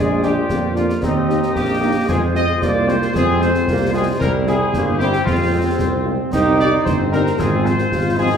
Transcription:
Already playing: tuba A#1, trombone section G#3, woodwind section F4 D5, trumpet section G#4
0.22 french horn section A#3 D4 F4, trumpet section G4, snare
0.49 tuba F2, trombone section A#3, concert bass drum, snare
0.75 french horn section A#3 D4 F4, trumpet section F4, snare
0.90 snare
1.02 tuba D#2, trombone section C4, trumpet section D#4, woodwind section G4 D#5, concert bass drum, snare
1.28 french horn section A#3 D#4 G4, snare
1.43 snare
1.55 tuba A#1, trombone section A#3, trumpet section G4, concert bass drum, snare
1.81 french horn section A#3 D#4 G4
2.08 tuba F2, trombone section G#3, woodwind section F4 C5, trumpet section G#4, concert bass drum, snare, crash
2.34 french horn section G#3 C4 F4, trumpet section D#5, snare
2.61 tuba C2, trombone section A#3, trumpet section D5, concert bass drum, snare
2.87 french horn section G#3 C4 F4, trumpet section C5, snare
3.02 snare
3.14 tuba F2, trombone section C4, trumpet section G#4, concert bass drum, snare
3.40 french horn section G#3 C4 F4, trumpet section C5, snare
3.55 snare
3.66 tuba C2, trombone section A#3, concert bass drum, snare
3.93 trombone section G#3, french horn section G#3 C4 F4, trumpet section G#4
4.19 tuba C2, trombone section G3, woodwind section E4 C5, trumpet section A#4, concert bass drum, snare
4.46 french horn section G3 C4 E4, trumpet section G#4, snare
4.73 tuba G1, trombone section A#3, concert bass drum, snare
4.98 french horn section G3 C4 E4, trombone section C4, trumpet section G4, snare
5.13 snare
5.25 tuba F2, trumpet section F4, woodwind section F4, concert bass drum, snare
5.53 french horn section G#3 C4 F4
5.79 tuba C2, concert bass drum, snare
6.06 french horn section G#3 C4 F4
6.32 tuba C2, trombone section D#4, woodwind section D#4 C5, trumpet section G4, concert bass drum, snare, crash
6.59 french horn section G3 C4 D#4, trumpet section D5, snare
6.85 tuba G1, trombone section C4, trumpet section C5, concert bass drum, snare
7.12 french horn section G3 C4 D#4, trumpet section A#4, snare
7.27 snare
7.39 tuba G#1, woodwind section F4, trumpet section G#4, concert bass drum, snare
7.65 french horn section F3 C4 F4, trumpet section C5, snare
7.79 snare
7.92 tuba G#1, trombone section F4, concert bass drum, snare
8.17 french horn section F3 C4 F4, trombone section D#4, trumpet section G#4

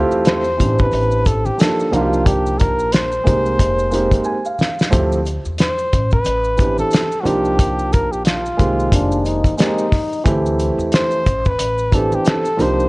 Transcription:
Already playing: grand piano A3 C4 E4 F4 G4
0.12 upright bass E2, maracas
0.25 muted trumpet C5, snare, closed hi-hat, maracas
0.44 maracas
0.57 upright bass A1, grand piano E3 B3 C4 D4, kick, closed hi-hat, low conga, maracas
0.61 grand piano G4
0.78 muted trumpet B4, kick, maracas
0.92 upright bass A1, closed hi-hat, high conga, maracas
1.11 maracas
1.25 muted trumpet A4, kick, closed hi-hat, maracas
1.45 muted trumpet G4, high conga, maracas
1.57 grand piano F3 A#3 D4 D#4 G4, muted trumpet A4, snare, closed hi-hat, maracas
1.80 maracas
1.91 upright bass C2, grand piano F3 A#3 D4 D#4 F#4, muted trumpet F4, closed hi-hat, high conga, low conga, maracas
2.01 grand piano G4
2.13 maracas
2.26 muted trumpet G4, kick, closed hi-hat, maracas
2.46 maracas
2.58 muted trumpet A#4, kick, closed hi-hat, maracas
2.79 upright bass A#1, maracas
2.92 muted trumpet C5, snare, closed hi-hat, maracas
3.12 maracas
3.24 upright bass C2, grand piano G#3 A#3 C4 D#4 G4, kick, closed hi-hat, high conga, low conga, maracas
3.46 maracas
3.59 upright bass F1, kick, closed hi-hat, high conga, maracas
3.79 maracas
3.91 grand piano G#3 A#3 C4 D#4 G4, closed hi-hat, maracas
4.12 kick, closed hi-hat, high conga, maracas
4.24 grand piano G#5, maracas
4.45 grand piano F5, maracas
4.59 snare, high conga, low conga, maracas
4.79 snare, maracas
4.90 upright bass D2, grand piano F3 A3 C4 E4 G4, kick, closed hi-hat, maracas
5.12 maracas
5.25 closed hi-hat, maracas
5.45 upright bass E2, maracas
5.58 muted trumpet C5, snare, closed hi-hat, maracas
5.78 maracas
5.93 upright bass A1, kick, closed hi-hat, low conga, maracas
6.11 muted trumpet B4, kick, maracas
6.24 upright bass A1, closed hi-hat, high conga, maracas
6.44 maracas
6.57 grand piano E3 B3 C4 D4 G4, kick, closed hi-hat, maracas
6.78 muted trumpet A4, high conga, maracas
6.91 snare, closed hi-hat, maracas
7.12 maracas
7.21 grand piano F3 A#3, muted trumpet F#4
7.25 upright bass C2, grand piano D4 D#4 G4, muted trumpet G4, closed hi-hat, high conga, low conga, maracas
7.45 maracas
7.59 kick, closed hi-hat, maracas
7.79 maracas
7.93 muted trumpet A#4, kick, closed hi-hat, maracas
8.11 upright bass A#1, muted trumpet G4, maracas
8.25 muted trumpet F4, snare, closed hi-hat, maracas
8.46 maracas
8.57 upright bass C2, grand piano D#3 G#3 A#3 C4 G4, kick, closed hi-hat, low conga, maracas
8.80 maracas
8.92 upright bass F1, trombone D4, kick, closed hi-hat, high conga, maracas
9.12 maracas
9.25 trombone D#4, closed hi-hat, maracas
9.44 kick, closed hi-hat, high conga, maracas
9.57 grand piano G#3 A#3 C4 D#4 G4, trombone D#4, snare, closed hi-hat, maracas
9.78 maracas
9.92 kick, snare, open hi-hat, high conga, low conga, maracas
10.13 maracas
10.24 upright bass D2, grand piano E3 A3 C4 E4 G4, trombone E4, kick, closed hi-hat, maracas
10.46 maracas
10.59 closed hi-hat, maracas
10.78 upright bass E2, maracas
10.92 muted trumpet C5, snare, closed hi-hat, maracas
11.11 maracas
11.26 upright bass A1, kick, closed hi-hat, low conga, maracas
11.45 muted trumpet B4, kick, maracas
11.59 upright bass A1, closed hi-hat, high conga, maracas
11.78 maracas
11.92 grand piano E3 B3 C4 D4, muted trumpet A4, kick, closed hi-hat, maracas
11.96 grand piano G4
12.12 muted trumpet G4, high conga, maracas
12.25 muted trumpet A4, snare, closed hi-hat, maracas
12.45 maracas
12.57 upright bass C2, grand piano F3 A#3 D4 D#4 G4, closed hi-hat, high conga, low conga, maracas
12.62 muted trumpet C5
12.80 maracas

